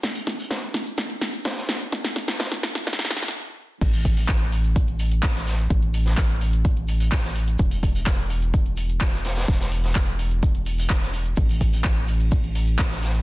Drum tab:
CC |--------------------------------|--------------------------------|x-------------------------------|--------------------------------|
RD |--------------------------------|--------------------------------|--------------------------------|--------------------------------|
HH |x-x-o-x-x-x-o-x-x-x-o-x-x-x-o-x-|x-x-o---x-x-o-x-x-x-o-x---------|x-x-o-x-x-x-o-x-x-x-o-x-x-x-o-x-|x-x-o-x-x-x-o-x-x-x-o-x-x-x-o-x-|
SH |x-x-x-x-x-x-x-x-x-x-x-x-x-x-x-x-|x-x-x-x-x-x-x-x-x-x-x-x---------|x---x-x-x---x-x-x---x-x-x---x-x-|x---x-x-x---x-x-x---x-x-x---x-x-|
CP |--------------------------------|--------------------------------|--------x---------------x-------|--------x---------------x-------|
SD |o---o---o---o---o---o---o-o-o---|o-o-o-o-o-o-o-o-oooooooo--------|--------o---------------o-o-o---|------o-o---------------o-o-----|
BD |o---o---o-------o-------o-------|o---o---o-------o---------------|o---o---o-------o-------o-------|o-------o-------o-------o-------|

CC |--------------------------------|--------------------------------|--------------------------------|
RD |--------------------------------|--------------------------------|x-------x-------x-------x-------|
HH |x-x-o-x-x-x-o-x-x-x-o-x-x-x-o-x-|x-x-o-x-x-x-o-x-x-x-o-x-x-x-o-x-|x-x-o-x-x-x-o-x-x-x-o-x-x-x-o-x-|
SH |x---x-x-x---x-x-x---x-x-x---x-x-|x-x-x-x-x---x-x-x-x-x-x-x---x-x-|x---x-x-x---x-x-x---x-x-x---x-x-|
CP |--------x---------------x-------|--------x---------------x-------|--------x---------------x-------|
SD |--------o---------------o-o-o-o-|o-o---o-o---------------o-o-----|--------o---------------o-o-o---|
BD |o---o---o-------o-------o-------|o-------o-------o-------o-------|o---o---o-------o-------o-------|